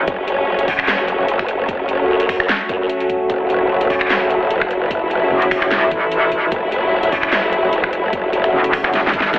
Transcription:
0.00 9.39 F#3 medium
0.00 9.39 A3 medium
0.00 3.28 C#4 medium
0.08 0.26 F#1 medium
0.08 kick loud
0.08 closed hi-hat medium
0.28 0.46 F#1 loud
0.28 closed hi-hat medium
0.48 0.67 F#1 loud
0.59 closed hi-hat medium
0.68 0.87 F#2 loud
0.68 kick loud
0.68 open hi-hat medium
0.79 finger snap medium
0.88 1.67 F#1 loud
0.88 snare loud
0.88 clap medium
0.88 closed hi-hat medium
1.08 closed hi-hat medium
1.19 1.24 A3 medium
1.19 1.24 C#4 medium
1.19 1.24 F#4 loud
1.28 closed hi-hat medium
1.39 finger snap medium
1.39 kick medium
1.48 closed hi-hat medium
1.69 1.87 F#1 loud
1.69 kick loud
1.69 closed hi-hat medium
1.89 2.07 F#1 loud
1.89 closed hi-hat medium
2.00 2.37 A3 medium
2.00 2.37 C#4 medium
2.00 2.37 F#4 medium
2.09 2.48 F#2 loud
2.20 closed hi-hat medium
2.29 finger snap medium
2.29 kick loud
2.29 open hi-hat medium
2.40 finger snap medium
2.49 snare loud
2.49 clap medium
2.49 closed hi-hat medium
2.69 2.88 F#2 loud
2.69 4.39 A3 medium
2.69 4.39 C#4 medium
2.69 4.39 F#4 loud
2.69 kick loud
2.69 closed hi-hat soft
2.90 closed hi-hat medium
3.00 closed hi-hat soft
3.10 kick medium
3.10 closed hi-hat medium
3.30 3.48 F#1 loud
3.30 9.39 E4 medium
3.30 kick loud
3.30 closed hi-hat medium
3.50 3.69 F#1 loud
3.50 closed hi-hat medium
3.70 3.89 F#1 loud
3.81 closed hi-hat medium
3.90 4.09 F#2 loud
3.90 kick loud
3.90 open hi-hat medium
4.01 finger snap medium
4.10 4.89 F#1 loud
4.10 snare loud
4.10 clap medium
4.10 closed hi-hat medium
4.30 closed hi-hat medium
4.41 4.46 A3 medium
4.41 4.46 C#4 medium
4.41 4.46 F#4 loud
4.51 closed hi-hat medium
4.61 finger snap medium
4.61 kick medium
4.71 closed hi-hat medium
4.91 5.09 F#1 medium
4.91 kick loud
4.91 closed hi-hat medium
5.11 5.30 F#1 medium
5.11 closed hi-hat medium
5.22 5.60 A3 medium
5.22 5.60 C#4 medium
5.22 5.60 F#4 medium
5.31 5.90 F#1 loud
5.42 closed hi-hat medium
5.51 finger snap medium
5.51 kick loud
5.51 open hi-hat medium
5.62 5.69 A3 medium
5.62 5.69 C#4 medium
5.62 5.69 F#4 loud
5.62 finger snap medium
5.71 snare loud
5.71 clap medium
5.71 closed hi-hat medium
5.91 6.50 A1 loud
5.91 kick loud
5.91 closed hi-hat medium
6.12 closed hi-hat medium
6.32 kick medium
6.32 closed hi-hat medium
6.52 6.71 F#1 loud
6.52 kick loud
6.52 closed hi-hat medium
6.72 6.91 F#1 loud
6.72 closed hi-hat medium
6.92 7.11 F#1 loud
7.03 closed hi-hat medium
7.12 7.31 F#2 loud
7.12 kick loud
7.12 open hi-hat loud
7.23 finger snap medium
7.32 8.12 F#1 loud
7.32 snare loud
7.32 clap medium
7.32 closed hi-hat medium
7.53 closed hi-hat medium
7.63 7.68 A3 medium
7.63 7.68 C#4 medium
7.63 7.68 F#4 loud
7.73 closed hi-hat medium
7.84 finger snap medium
7.84 kick medium
7.93 closed hi-hat medium
8.13 8.32 F#1 loud
8.13 kick loud
8.13 closed hi-hat medium
8.33 8.52 F#1 medium
8.33 closed hi-hat medium
8.44 8.82 A3 medium
8.44 8.82 C#4 medium
8.44 8.82 F#4 medium
8.44 finger snap medium
8.44 closed hi-hat soft
8.53 8.92 F#1 loud
8.64 closed hi-hat medium
8.73 finger snap medium
8.73 kick loud
8.73 open hi-hat loud
8.84 8.92 A3 medium
8.84 8.92 C#4 medium
8.84 8.92 F#4 loud
8.84 finger snap medium
8.93 9.12 F#1 medium
8.93 snare medium
8.93 closed hi-hat medium
9.07 snare medium
9.14 9.39 G#1 loud
9.14 kick loud
9.14 closed hi-hat medium
9.20 snare medium
9.34 snare medium
9.34 closed hi-hat medium

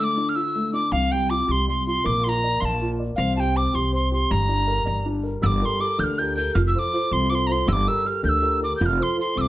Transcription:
0.00 0.89 D3 medium
0.00 0.17 A3 medium
0.00 0.31 D6 loud
0.17 0.35 D4 medium
0.29 0.37 F6 medium
0.35 0.55 F4 medium
0.35 0.73 E6 loud
0.55 0.73 A3 medium
0.73 0.91 D4 medium
0.73 0.94 D6 medium
0.92 1.40 C2 medium
0.92 2.02 C3 medium
0.92 1.13 F5 loud
1.12 1.30 G3 medium
1.12 1.31 G5 medium
1.29 1.48 F4 medium
1.29 1.48 D6 loud
1.48 1.97 C2 medium
1.48 1.68 G4 medium
1.48 1.68 C6 loud
1.48 1.52 D6 loud
1.68 1.86 G3 medium
1.68 1.86 C6 medium
1.87 2.05 F4 medium
1.87 2.07 C6 loud
2.04 2.54 A#1 loud
2.04 3.14 A#3 medium
2.04 2.25 D6 loud
2.24 2.43 F4 medium
2.24 2.30 C6 loud
2.29 2.62 A#5 loud
2.44 2.61 D5 medium
2.60 3.10 A#1 medium
2.60 2.81 F5 medium
2.60 2.66 C6 medium
2.65 2.91 A5 medium
2.81 2.99 F4 medium
2.99 3.17 D5 medium
3.16 3.66 C2 loud
3.16 4.27 C4 medium
3.16 3.36 F5 loud
3.37 3.55 G4 medium
3.37 3.58 G5 loud
3.37 3.41 A5 loud
3.55 3.73 C5 medium
3.55 3.76 D6 medium
3.74 4.22 C2 medium
3.74 3.93 G4 medium
3.74 3.94 C6 loud
3.93 4.11 C5 medium
3.93 4.12 C6 medium
4.12 4.30 G4 medium
4.12 4.33 C6 medium
4.30 4.79 G1 loud
4.30 5.40 G3 medium
4.30 5.07 A#5 medium
4.49 4.67 D4 medium
4.67 4.86 A#4 medium
4.86 5.35 G1 medium
4.86 5.06 D5 medium
5.06 5.24 D4 medium
5.23 5.42 A#4 medium
5.42 5.60 G1 loud
5.42 5.79 G3 medium
5.42 5.47 E6 medium
5.46 5.62 D6 loud
5.62 5.78 G4 medium
5.62 5.78 A4 medium
5.62 5.79 A#4 medium
5.62 5.82 C6 loud
5.62 5.66 D6 loud
5.79 6.11 G4 medium
5.79 6.11 A4 medium
5.79 6.11 A#4 medium
5.79 6.01 D6 loud
5.98 6.47 D2 medium
5.98 6.36 D3 medium
5.98 6.05 G6 loud
6.04 6.20 F6 loud
6.19 6.35 G4 medium
6.19 6.36 A4 medium
6.19 6.36 A#4 medium
6.19 6.36 G6 loud
6.37 6.52 G4 soft
6.37 6.52 A4 soft
6.37 6.52 A#4 medium
6.37 6.54 G6 loud
6.55 6.73 F1 loud
6.55 6.92 F3 medium
6.55 6.61 F6 loud
6.67 6.74 E6 medium
6.74 6.92 F4 medium
6.74 6.92 A4 medium
6.74 6.93 C5 medium
6.74 6.80 E6 loud
6.79 7.14 D6 loud
6.93 7.24 F4 medium
6.93 7.24 A4 soft
6.93 7.24 C5 medium
7.11 7.60 C2 loud
7.11 7.48 C3 medium
7.11 7.31 C6 loud
7.30 7.47 F4 medium
7.30 7.48 A4 soft
7.30 7.48 C5 medium
7.30 7.36 D6 loud
7.35 7.48 C6 loud
7.47 7.64 F4 medium
7.47 7.64 A4 soft
7.47 7.64 C5 medium
7.47 7.53 A#5 loud
7.52 7.70 C6 loud
7.66 7.85 G1 loud
7.66 8.04 G3 medium
7.66 7.74 E6 loud
7.73 7.90 D6 loud
7.87 8.03 G4 medium
7.87 8.04 A4 soft
7.87 8.04 A#4 medium
7.87 8.08 E6 loud
8.05 8.36 G4 medium
8.05 8.36 A4 soft
8.05 8.36 A#4 medium
8.05 8.24 F6 loud
8.23 8.72 D2 loud
8.23 8.60 D3 medium
8.23 8.30 G6 loud
8.29 8.60 E6 loud
8.41 8.58 G4 medium
8.41 8.59 A4 medium
8.41 8.60 A#4 medium
8.60 8.75 G4 medium
8.60 8.76 A4 soft
8.60 8.76 A#4 medium
8.60 8.76 D6 medium
8.77 8.98 F1 loud
8.77 9.17 F3 medium
8.77 8.82 G6 medium
8.82 9.04 F6 loud
8.82 8.87 G6 loud
8.98 9.15 F4 medium
8.98 9.16 A4 medium
8.98 9.16 C5 medium
9.03 9.19 C6 loud
9.17 9.48 F4 medium
9.17 9.48 A4 medium
9.17 9.48 C5 medium
9.17 9.39 C6 medium
9.35 9.48 C2 medium
9.35 9.48 C3 medium
9.35 9.42 E6 medium
9.41 9.48 D6 loud

